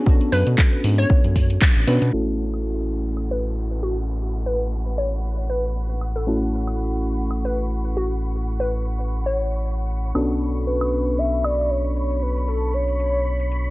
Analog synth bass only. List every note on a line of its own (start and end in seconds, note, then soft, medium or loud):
0.07 0.18 B1 loud
0.32 0.44 F#2 loud
0.47 0.56 B2 medium
0.84 1.06 G#2 loud
1.10 1.22 B1 loud
1.24 1.58 F#2 medium
1.76 1.85 A1 medium
1.88 1.99 B2 medium
2.02 2.11 B2 medium
2.13 10.13 A1 medium
10.15 13.70 B1 medium